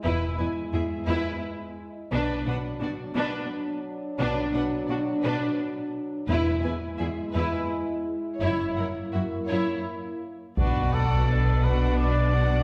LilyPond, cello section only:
\new Staff \with { instrumentName = "Cello section" } { \clef bass \time 6/8 \key b \dorian \tempo 4. = 57 e,8 e,8 e,8 e,8 r4 | b,8 b,8 b,8 b,8 r4 | b,8 b,8 b,8 b,8 r4 | e,8 e,8 e,8 e,8 r4 |
fis,8 fis,8 fis,8 fis,8 r4 | \key b \minor b,2. | }